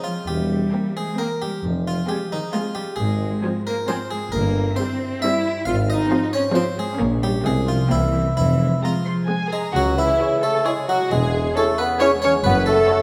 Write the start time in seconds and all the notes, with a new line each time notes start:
Already playing: F3 G#3 C4 F4 G#4 C5 G#5
0.04 F3 C4 F4
0.28 E1 E2 E3 G3 G4
0.52 C4
0.72 A#3 C4 A#4 G5
0.96 G#3 G#4 C5
1.18 A#3 C4 A#4 G5
1.42 G3 C4 G4
1.64 F1 F2 F3
1.87 F3 C4 F4
2.08 G3 G#3 C4 G4 G#4 G#5
2.32 D#3 D#4 C5
2.53 F3 G#3 C4 F4 G#4 G#5
2.75 G3 C4 G4
2.96 G#1 G#2 G#3 G#4
3.00 G#1
3.22 C4
3.44 F3 C4 F4 G#5
3.66 A#3 A#4 C5
3.88 F3 C4 F4 C5 G#5
4.11 G#3 C4 G#4
4.32 G1 G2 A#3 A#4
4.55 C4
4.76 G3 C4 E4 C5 E5
5.00 C5
5.22 G3 C4 E4 E5
5.44 C4
5.65 G#1 G#2 F4 F5
5.89 C4 D#4 D#5
6.10 F3 C4 F4 F5
6.33 C#4 C5 C#5
6.53 F3 C4 F4 C5 F5
6.77 G#3 C4 G#4
6.98 A#1 A#2 A#3 C#4 C#5
7.22 G3 C#4 G4 C#5
7.43 C2 C3 G#3 C4 G#4 F5
7.66 F3 F4 C5
7.89 C2 C3 E3 A#3 C4 E4 G5
8.12 G4 C5
8.35 F1 F2 E3 F3 E4
8.59 G#3
8.82 F3 G#3 C4 F4 G#4 A#5
9.06 C5 C6
9.28 G#3 C4 G#4 G#5
9.48 G#3 G#4
9.52 G#3 G#4 A#5
9.72 C#2 C#3 F#3 F#4
9.76 F#4
9.86 G#3
9.95 E3 E4 G#4
10.09 C#5
10.20 E4 G#4 C#5 G#5
10.32 G#5
10.41 A3 A4 C#6
10.54 G#5
10.64 G#3 E4 G#4 C#5 G#5
10.77 G#3
10.88 F#3 C#4 F#4
11.00 G#3
11.11 E1 E2 G#3 G#4
11.22 G#3
11.34 G#4
11.46 C#5
11.55 A3 E4 G#4 A4 C#5 G#5
11.68 G#5
11.78 B3 B4 C#6
11.90 G#5
12.00 C#4 E4 G#4 C#5 G#5
12.14 G#3
12.22 E3 C#4 C#5
12.35 G#3
12.44 F#1 F#2 B3 B4
12.58 C#4
12.66 A3 F#4 A4
12.80 C#5
12.90 F#4 A4 C#5 F#5